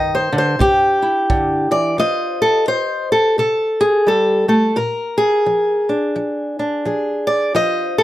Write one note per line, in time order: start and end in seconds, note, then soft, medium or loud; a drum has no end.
0.00 0.32 D#3 medium
0.00 0.15 D#5 medium
0.15 0.37 C5 medium
0.32 0.59 D3 medium
0.38 0.61 C5 loud
0.59 1.24 C3 medium
0.59 1.71 G4 loud
0.59 kick medium
1.02 1.96 E4 soft
1.30 1.71 D3 medium
1.30 kick medium
1.71 1.99 E3 medium
1.71 1.99 D5 loud
1.98 2.62 F3 medium
1.98 2.68 F4 medium
1.98 2.41 C5 soft
1.98 3.11 D#5 loud
2.42 2.68 A4 loud
2.68 3.32 F4 medium
2.68 3.10 C5 loud
3.12 3.38 A4 medium
3.38 4.02 C3 medium
3.38 4.07 A4 medium
3.81 4.08 G#4 medium
4.07 4.48 G3 medium
4.07 4.48 A4 medium
4.48 4.76 A3 medium
4.48 4.76 A4 medium
4.76 5.40 A#2 medium
4.76 5.88 A#4 medium
5.18 6.85 G#4 medium
5.46 6.10 F3 medium
5.89 6.58 D4 medium
6.16 6.80 F3 medium
6.59 7.52 D4 soft
6.85 7.50 F3 medium
6.85 7.52 G#4 soft
7.27 7.55 D5 loud
7.55 8.03 F3 medium
7.55 8.03 F4 medium
7.55 7.98 C5 medium
7.55 8.03 D#5 loud
7.98 8.03 A4 loud